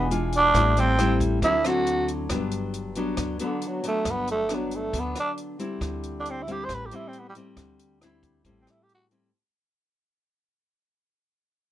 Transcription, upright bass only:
Already playing: E1
0.54 A1
1.42 D2
2.30 G1
3.18 D2
4.05 G1
4.93 D2
5.81 D2
6.69 A1
7.57 D2
8.44 A1

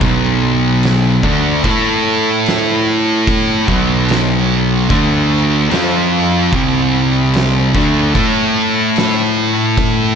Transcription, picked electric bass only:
0.01 B1
1.23 D2
1.64 A2
3.68 B1
4.91 D2
5.71 F2
6.53 C2
7.74 D2
8.15 A2

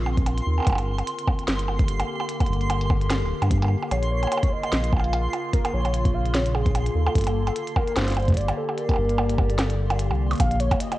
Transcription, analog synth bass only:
Already playing: A#1
0.47 D#2
0.67 G1
1.48 G1
2.49 G1
3.21 D1
3.42 G2
3.91 A#1
4.72 A#1
5.74 A#1
6.95 D#2
7.15 G1
7.97 G1
8.98 G1
10.11 C2
10.40 A#1

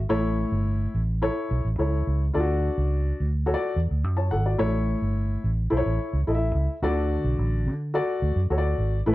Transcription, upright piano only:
0.09 A2 E4 A4 C#5
1.22 E4 A4 C#5
1.78 E4 A4 C#5
2.34 D4 F4 A4 D5
2.40 F#4
3.46 F#4 A4 C#5
3.54 D5
4.17 C#5 A5
4.31 A4 F#5
4.46 F#4 D5
4.58 A2 E4 A4 C#5
5.70 E4 A4 C5
5.77 C#5
6.27 E4 A4 D#5
6.35 E5
6.83 D3 F#4 A4 D5
7.94 F#4 A4 D5
8.50 F#4 A4 C#5
8.58 D5
9.06 A2 E4 A4 B4

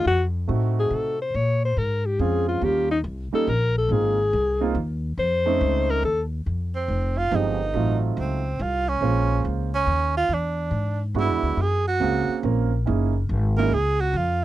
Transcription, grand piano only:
0.48 A3 C4 D#4 F#4
2.20 G#3 C4 C#4 F4
2.62 G3 A#3 C#4 F4
3.33 G3 A#3 C#4 D#4
3.91 A#3 C4 D#4 F4
4.61 A#3 C4 D#4 F4
5.46 A3 C4 C#4 D#4
7.32 F3 G#3 C4 D#4 G4
7.74 F#3 A3 C4 D#4 F4
9.02 G#3 A#3 C#4 F4 C5
11.15 G#3 B3 D4 E4 F#4
12.00 A#3 C4 C#4 G#4 F5
12.44 A#3 C4 C#4 F4 A#4
12.86 A#3 C#4 D#4 E4 G#4
13.57 A#3 C#4 D#4 E4 G#4

